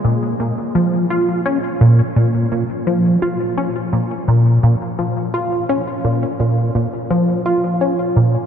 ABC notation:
X:1
M:4/4
L:1/8
Q:1/4=85
K:Bbm
V:1 name="Synth arpeggio sound" clef=bass
B,, B,, F, F D B,, B,, B,, | F, F D B,, B,, B,, F, F | D B,, B,, B,, F, F D B,, |]